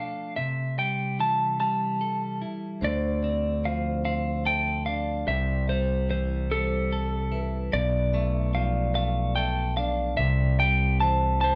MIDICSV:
0, 0, Header, 1, 5, 480
1, 0, Start_track
1, 0, Tempo, 819001
1, 212, Time_signature, 6, 3, 24, 8
1, 6770, End_track
2, 0, Start_track
2, 0, Title_t, "Clean electric guitar"
2, 0, Program_c, 0, 27
2, 0, Note_on_c, 0, 77, 60
2, 211, Note_off_c, 0, 77, 0
2, 213, Note_on_c, 0, 76, 65
2, 459, Note_off_c, 0, 76, 0
2, 461, Note_on_c, 0, 79, 56
2, 703, Note_off_c, 0, 79, 0
2, 706, Note_on_c, 0, 81, 64
2, 932, Note_off_c, 0, 81, 0
2, 939, Note_on_c, 0, 81, 67
2, 1452, Note_off_c, 0, 81, 0
2, 1667, Note_on_c, 0, 74, 59
2, 2142, Note_on_c, 0, 77, 56
2, 2153, Note_off_c, 0, 74, 0
2, 2368, Note_off_c, 0, 77, 0
2, 2375, Note_on_c, 0, 77, 65
2, 2614, Note_off_c, 0, 77, 0
2, 2617, Note_on_c, 0, 79, 59
2, 2838, Note_off_c, 0, 79, 0
2, 2848, Note_on_c, 0, 77, 56
2, 3091, Note_off_c, 0, 77, 0
2, 3093, Note_on_c, 0, 76, 65
2, 3316, Note_off_c, 0, 76, 0
2, 3336, Note_on_c, 0, 72, 59
2, 3571, Note_off_c, 0, 72, 0
2, 3578, Note_on_c, 0, 72, 58
2, 3818, Note_on_c, 0, 69, 62
2, 3822, Note_off_c, 0, 72, 0
2, 4332, Note_off_c, 0, 69, 0
2, 4533, Note_on_c, 0, 74, 73
2, 4989, Note_off_c, 0, 74, 0
2, 5009, Note_on_c, 0, 77, 59
2, 5234, Note_off_c, 0, 77, 0
2, 5247, Note_on_c, 0, 77, 72
2, 5473, Note_off_c, 0, 77, 0
2, 5483, Note_on_c, 0, 79, 63
2, 5711, Note_off_c, 0, 79, 0
2, 5726, Note_on_c, 0, 77, 67
2, 5958, Note_off_c, 0, 77, 0
2, 5961, Note_on_c, 0, 76, 77
2, 6208, Note_off_c, 0, 76, 0
2, 6210, Note_on_c, 0, 79, 73
2, 6447, Note_off_c, 0, 79, 0
2, 6450, Note_on_c, 0, 81, 68
2, 6681, Note_off_c, 0, 81, 0
2, 6688, Note_on_c, 0, 81, 73
2, 6705, Note_on_c, 0, 72, 67
2, 6770, Note_off_c, 0, 72, 0
2, 6770, Note_off_c, 0, 81, 0
2, 6770, End_track
3, 0, Start_track
3, 0, Title_t, "Vibraphone"
3, 0, Program_c, 1, 11
3, 1648, Note_on_c, 1, 72, 66
3, 1890, Note_off_c, 1, 72, 0
3, 1892, Note_on_c, 1, 74, 53
3, 2130, Note_on_c, 1, 72, 53
3, 2132, Note_off_c, 1, 74, 0
3, 2611, Note_off_c, 1, 72, 0
3, 2614, Note_on_c, 1, 76, 50
3, 2852, Note_on_c, 1, 74, 52
3, 2853, Note_off_c, 1, 76, 0
3, 3332, Note_off_c, 1, 74, 0
3, 3572, Note_on_c, 1, 72, 62
3, 4052, Note_off_c, 1, 72, 0
3, 4290, Note_on_c, 1, 71, 52
3, 4527, Note_on_c, 1, 74, 68
3, 4531, Note_off_c, 1, 71, 0
3, 4766, Note_on_c, 1, 76, 60
3, 4770, Note_off_c, 1, 74, 0
3, 5007, Note_on_c, 1, 74, 59
3, 5010, Note_off_c, 1, 76, 0
3, 5490, Note_off_c, 1, 74, 0
3, 5493, Note_on_c, 1, 76, 63
3, 5733, Note_off_c, 1, 76, 0
3, 5734, Note_on_c, 1, 74, 57
3, 6214, Note_off_c, 1, 74, 0
3, 6458, Note_on_c, 1, 72, 59
3, 6770, Note_off_c, 1, 72, 0
3, 6770, End_track
4, 0, Start_track
4, 0, Title_t, "Clean electric guitar"
4, 0, Program_c, 2, 27
4, 0, Note_on_c, 2, 53, 40
4, 0, Note_on_c, 2, 57, 38
4, 0, Note_on_c, 2, 62, 39
4, 0, Note_on_c, 2, 69, 50
4, 214, Note_off_c, 2, 62, 0
4, 215, Note_off_c, 2, 53, 0
4, 219, Note_on_c, 2, 48, 45
4, 462, Note_off_c, 2, 57, 0
4, 464, Note_on_c, 2, 55, 44
4, 482, Note_off_c, 2, 69, 0
4, 698, Note_on_c, 2, 52, 43
4, 929, Note_off_c, 2, 55, 0
4, 936, Note_on_c, 2, 55, 44
4, 1178, Note_on_c, 2, 69, 50
4, 1416, Note_off_c, 2, 48, 0
4, 1416, Note_on_c, 2, 64, 46
4, 1654, Note_off_c, 2, 55, 0
4, 1654, Note_off_c, 2, 64, 0
4, 1654, Note_on_c, 2, 50, 50
4, 1655, Note_off_c, 2, 52, 0
4, 1655, Note_off_c, 2, 69, 0
4, 1898, Note_on_c, 2, 60, 49
4, 2138, Note_on_c, 2, 53, 43
4, 2365, Note_off_c, 2, 60, 0
4, 2372, Note_on_c, 2, 60, 47
4, 2610, Note_on_c, 2, 69, 53
4, 2853, Note_off_c, 2, 50, 0
4, 2853, Note_on_c, 2, 62, 42
4, 3092, Note_off_c, 2, 60, 0
4, 3092, Note_on_c, 2, 48, 51
4, 3093, Note_off_c, 2, 62, 0
4, 3095, Note_off_c, 2, 53, 0
4, 3335, Note_on_c, 2, 55, 48
4, 3353, Note_off_c, 2, 69, 0
4, 3571, Note_on_c, 2, 52, 47
4, 3808, Note_off_c, 2, 55, 0
4, 3815, Note_on_c, 2, 55, 50
4, 4058, Note_on_c, 2, 69, 61
4, 4288, Note_on_c, 2, 64, 45
4, 4293, Note_off_c, 2, 48, 0
4, 4530, Note_off_c, 2, 64, 0
4, 4530, Note_on_c, 2, 47, 52
4, 4532, Note_off_c, 2, 52, 0
4, 4534, Note_off_c, 2, 55, 0
4, 4548, Note_off_c, 2, 69, 0
4, 4770, Note_on_c, 2, 57, 57
4, 5011, Note_on_c, 2, 53, 49
4, 5251, Note_off_c, 2, 57, 0
4, 5253, Note_on_c, 2, 57, 49
4, 5492, Note_on_c, 2, 69, 60
4, 5731, Note_on_c, 2, 62, 46
4, 5732, Note_off_c, 2, 47, 0
4, 5971, Note_on_c, 2, 48, 56
4, 5972, Note_off_c, 2, 53, 0
4, 5973, Note_off_c, 2, 62, 0
4, 6218, Note_off_c, 2, 57, 0
4, 6220, Note_on_c, 2, 55, 48
4, 6238, Note_off_c, 2, 69, 0
4, 6459, Note_on_c, 2, 52, 47
4, 6690, Note_off_c, 2, 55, 0
4, 6697, Note_on_c, 2, 55, 55
4, 6770, Note_off_c, 2, 48, 0
4, 6770, Note_off_c, 2, 52, 0
4, 6770, Note_off_c, 2, 55, 0
4, 6770, End_track
5, 0, Start_track
5, 0, Title_t, "Fingered electric bass"
5, 0, Program_c, 3, 33
5, 1653, Note_on_c, 3, 38, 50
5, 3069, Note_off_c, 3, 38, 0
5, 3091, Note_on_c, 3, 36, 51
5, 4509, Note_off_c, 3, 36, 0
5, 4534, Note_on_c, 3, 35, 57
5, 5950, Note_off_c, 3, 35, 0
5, 5972, Note_on_c, 3, 36, 57
5, 6770, Note_off_c, 3, 36, 0
5, 6770, End_track
0, 0, End_of_file